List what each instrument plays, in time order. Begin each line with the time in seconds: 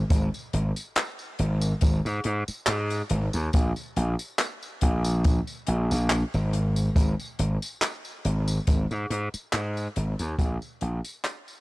0.10 slap bass G#1, kick, closed hi-hat, tambourine
0.34 tambourine
0.53 slap bass G#1, closed hi-hat
0.76 tambourine
0.96 clap, closed hi-hat, tambourine
1.19 tambourine
1.39 slap bass G#1, closed hi-hat
1.61 tambourine
1.81 slap bass G#1, kick, closed hi-hat, tambourine
2.05 slap bass G#2, tambourine
2.24 slap bass G#2, closed hi-hat
2.48 muted slap bass stroke, tambourine
2.67 slap bass G#2, clap, closed hi-hat, tambourine
2.90 closed hi-hat, tambourine
3.10 slap bass G#1, closed hi-hat
3.33 slap bass D#2, tambourine
3.53 slap bass A#1, kick, closed hi-hat, tambourine
3.76 tambourine
3.96 slap bass A#1, closed hi-hat
4.19 tambourine
4.39 clap, closed hi-hat, tambourine
4.63 tambourine
4.81 slap bass A#1, kick, closed hi-hat
5.04 tambourine
5.24 kick, closed hi-hat, tambourine
5.47 tambourine
5.67 slap bass A#1, closed hi-hat
5.91 slap bass A#1, tambourine
6.10 clap, closed hi-hat, tambourine
6.34 slap bass G#1, tambourine
6.53 closed hi-hat
6.76 tambourine
6.96 slap bass G#1, kick, closed hi-hat, tambourine
7.20 tambourine
7.39 slap bass G#1, closed hi-hat
7.62 tambourine
7.82 clap, closed hi-hat, tambourine
8.05 tambourine
8.25 slap bass G#1, closed hi-hat
8.48 tambourine
8.67 slap bass G#1, kick, closed hi-hat, tambourine
8.91 slap bass G#2, tambourine
9.10 slap bass G#2, closed hi-hat
9.34 muted slap bass stroke, tambourine
9.52 slap bass G#2, clap, closed hi-hat, tambourine
9.77 tambourine
9.96 slap bass G#1, closed hi-hat
10.19 slap bass D#2, tambourine
10.39 slap bass A#1, kick, closed hi-hat, tambourine
10.62 tambourine
10.81 slap bass A#1, closed hi-hat
11.05 tambourine
11.25 clap, closed hi-hat, tambourine
11.48 tambourine